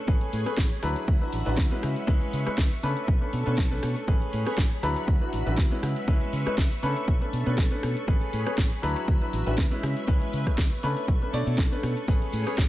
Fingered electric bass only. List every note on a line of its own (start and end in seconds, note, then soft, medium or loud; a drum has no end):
0.08 0.19 A1 loud
0.33 0.44 A2 medium
0.58 0.69 A1 loud
0.83 0.94 D2 medium
1.08 1.19 D2 medium
1.33 1.44 A1 medium
1.47 1.56 A1 medium
1.58 1.69 D2 medium
1.84 1.94 C#3 medium
2.08 2.19 C#2 loud
2.33 2.44 C#3 medium
2.47 muted fingered electric bass stroke soft
2.58 2.69 C#2 loud
2.83 2.94 C#3 medium
3.08 3.19 B1 medium
3.33 3.44 B2 medium
3.47 3.56 B2 medium
3.58 3.78 B1 loud
3.83 3.94 B2 medium
4.08 4.19 A1 loud
4.33 4.44 A2 medium
4.58 4.69 A1 loud
4.83 4.94 D2 medium
5.08 5.19 D2 medium
5.33 5.44 A1 medium
5.47 5.56 A1 loud
5.58 5.69 D2 medium
5.83 5.94 C#3 medium
6.08 6.19 C#2 loud
6.33 6.44 C#3 medium
6.46 muted fingered electric bass stroke soft
6.58 6.69 C#2 loud
6.83 6.94 C#3 medium
7.08 7.19 B1 medium
7.33 7.44 B2 medium
7.47 7.56 B2 medium
7.58 7.69 B1 medium
7.83 7.94 B2 medium
8.08 8.19 A1 loud
8.33 8.44 A2 medium
8.58 8.69 A1 loud
8.83 8.94 D2 medium
9.08 9.19 D2 medium
9.33 9.44 A1 medium
9.47 9.56 A1 medium
9.58 9.69 D2 medium
9.83 9.94 C#3 medium
10.08 10.19 C#2 loud
10.33 10.44 C#3 medium
10.47 muted fingered electric bass stroke soft
10.58 10.69 C#2 loud
10.84 10.94 C#3 medium
11.08 11.19 B1 medium
11.33 11.44 B2 medium
11.47 11.56 B2 medium
11.58 11.69 B1 medium
11.83 11.94 B2 medium
12.08 12.19 A1 loud
12.33 12.44 A2 medium
12.58 12.69 A1 loud